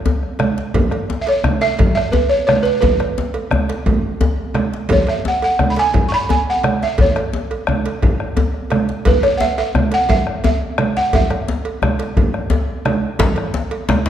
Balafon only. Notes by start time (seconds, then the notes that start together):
1.21 E5
1.28 C#5
1.62 E5
1.95 E5
2.12 B4
2.29 C#5
2.47 C#5
2.63 B4
2.81 B4
4.92 C#5
5.09 E5
5.28 F#5
5.44 F#5
5.70 B5
5.79 G#5
6.08 C#6
6.14 B5
6.30 G#5
6.50 F#5
6.83 E5
7.01 C#5
9.07 B4
9.23 C#5
9.38 E5 F#5
9.58 E5
9.94 F#5
10.10 E5
10.45 E5
10.97 F#5
11.15 E5